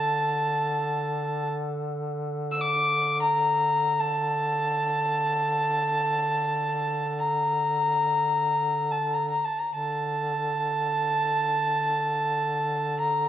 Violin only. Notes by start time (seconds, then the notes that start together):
Already playing: A5
2.52 E6
2.61 D6
3.22 A#5
4.00 A5
7.19 A#5
8.92 A5
9.14 A#5
9.30 A#5
9.44 A5
9.59 A#5
9.75 A5
13.01 A#5